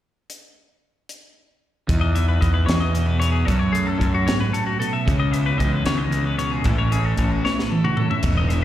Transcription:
0.30 closed hi-hat
1.09 closed hi-hat
1.88 clean electric guitar E2 D#4, fingered electric bass E2, kick, closed hi-hat
2.01 clean electric guitar D#5
2.15 clean electric guitar B3 E5, closed hi-hat
2.29 clean electric guitar B4
2.41 fingered electric bass E2, clean electric guitar E3 D#5, kick, closed hi-hat
2.54 clean electric guitar B4
2.66 fingered electric bass E2, clean electric guitar D#4 C#5, snare, closed hi-hat
2.80 clean electric guitar D#5
2.95 clean electric guitar B2, closed hi-hat
3.07 clean electric guitar B4
3.20 clean electric guitar B3 C#5, closed hi-hat
3.32 clean electric guitar G#4
3.45 clean electric guitar F#2 C#4 A4, fingered electric bass F#2, kick, closed hi-hat
3.59 clean electric guitar C#5
3.73 clean electric guitar A3 G#4, closed hi-hat
3.87 clean electric guitar A4
4.00 fingered electric bass F#2, clean electric guitar F#3, kick, closed hi-hat
4.14 clean electric guitar F#4
4.27 clean electric guitar G#2 C#5, snare, closed hi-hat
4.41 clean electric guitar B4
4.53 clean electric guitar A2 A4, closed hi-hat
4.67 clean electric guitar F#4
4.80 clean electric guitar B2 A4, closed hi-hat
4.93 clean electric guitar E5
5.06 fingered electric bass C#2, clean electric guitar C#3 C#4, kick, closed hi-hat
5.20 clean electric guitar D#5
5.31 clean electric guitar B3 E5, closed hi-hat
5.46 clean electric guitar B4
5.58 fingered electric bass C#2, clean electric guitar E3 D#5, kick, closed hi-hat
5.72 clean electric guitar B4
5.85 fingered electric bass C#2, clean electric guitar D#3 C#5, snare, closed hi-hat
5.98 clean electric guitar D#5
6.11 clean electric guitar C#3, closed hi-hat
6.25 clean electric guitar B4
6.38 clean electric guitar B2 C#5, closed hi-hat
6.52 clean electric guitar G#4
6.64 fingered electric bass A1, clean electric guitar A2 E4 A4, kick, closed hi-hat
6.78 clean electric guitar C#5
6.92 clean electric guitar C#4 G#4, closed hi-hat
7.05 clean electric guitar A4
7.17 fingered electric bass A1, clean electric guitar E3, kick, closed hi-hat
7.31 clean electric guitar F#4
7.45 clean electric guitar E4 C#5, snare
7.58 clean electric guitar B4, snare
7.70 clean electric guitar E3 A4, high tom
7.84 clean electric guitar F#4, mid tom
7.97 clean electric guitar C#4 A4, mid tom
8.10 clean electric guitar E5, floor tom
8.23 fingered electric bass E1, clean electric guitar E2 D#4, kick, closed hi-hat, crash
8.38 clean electric guitar D#5
8.49 clean electric guitar B3 E5, closed hi-hat

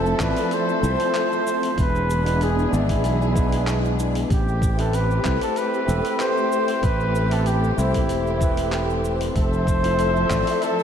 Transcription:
Already playing: fretless electric bass F1, string section F3 C4 A4 E5, tine electric piano A3 C4 E4 F4 C5, flugelhorn A4
0.06 cabasa
0.18 fretless electric bass A1, tine electric piano A3 C4 E4 F4 D5, flugelhorn B4, kick, clap, cabasa
0.37 open hi-hat, cabasa
0.51 flugelhorn C5, open hi-hat, cabasa
0.69 cabasa
0.80 fretless electric bass C2, tine electric piano A3 C4 E4
0.84 tine electric piano F4 C5, cabasa
1.00 open hi-hat, cabasa
1.15 clap, open hi-hat, cabasa
1.32 cabasa
1.47 cabasa
1.63 open hi-hat, cabasa
1.78 fretless electric bass E1, string section E3 B3 D4 G#4, flugelhorn B4, kick, open hi-hat, cabasa
1.95 cabasa
2.10 cabasa
2.24 tine electric piano G#3 B3 D4 E4 B4, open hi-hat, cabasa
2.41 flugelhorn G#4, open hi-hat, cabasa
2.59 cabasa
2.71 fretless electric bass G#1, tine electric piano G#3 B3 D4 E4 D5, flugelhorn E4, cabasa
2.89 kick, open hi-hat, cabasa
3.04 fretless electric bass B1, open hi-hat, cabasa
3.22 cabasa
3.32 tine electric piano G#3 B3 D4, kick, cabasa
3.37 tine electric piano E4 B4
3.52 open hi-hat, cabasa
3.67 clap, open hi-hat, cabasa
3.85 cabasa
3.99 cabasa
4.15 open hi-hat, cabasa
4.30 fretless electric bass A1, string section A3 C4 G4, flugelhorn G4, kick, open hi-hat, cabasa
4.48 cabasa
4.62 kick, cabasa
4.77 tine electric piano A3 C4 E4 G4 B4, flugelhorn A4, open hi-hat, cabasa
4.93 flugelhorn B4, open hi-hat, cabasa
5.11 cabasa
5.23 fretless electric bass C2, tine electric piano A3 C4 E4 G4 C5, kick, clap, cabasa
5.41 flugelhorn A4, open hi-hat, cabasa
5.56 flugelhorn B4, open hi-hat, cabasa
5.74 cabasa
5.85 fretless electric bass E1, tine electric piano A3 C4 E4, cabasa
5.90 tine electric piano G4 A4
6.05 open hi-hat, cabasa
6.20 flugelhorn C5, clap, open hi-hat, cabasa
6.37 cabasa
6.52 cabasa
6.68 open hi-hat, cabasa
6.83 fretless electric bass A1, flugelhorn B4, kick, open hi-hat, cabasa
7.00 cabasa
7.15 cabasa
7.29 tine electric piano A3 C4 E4 G4 B4, flugelhorn A4, open hi-hat, cabasa
7.46 flugelhorn G4, open hi-hat, cabasa
7.64 cabasa
7.76 fretless electric bass C2, tine electric piano A3 C4 E4 G4 C5, flugelhorn E4, cabasa
7.94 kick, open hi-hat, cabasa
8.09 fretless electric bass E1, open hi-hat, cabasa
8.27 cabasa
8.38 tine electric piano A3 C4 E4, kick, cabasa
8.42 tine electric piano G4 B4
8.57 open hi-hat, cabasa
8.72 clap, open hi-hat, cabasa
8.90 cabasa
9.04 cabasa
9.21 open hi-hat, cabasa
9.36 fretless electric bass F1, string section F3 A4 E5, flugelhorn C5, kick, open hi-hat, cabasa
9.53 cabasa
9.67 kick, cabasa
9.82 tine electric piano A3 C4 E4 F4 C5, open hi-hat, cabasa
9.99 open hi-hat, cabasa
10.16 cabasa
10.28 fretless electric bass A1, tine electric piano A3 C4 E4 F4 D5, kick, clap, cabasa
10.47 open hi-hat, cabasa
10.62 flugelhorn A4, open hi-hat, cabasa
10.79 cabasa

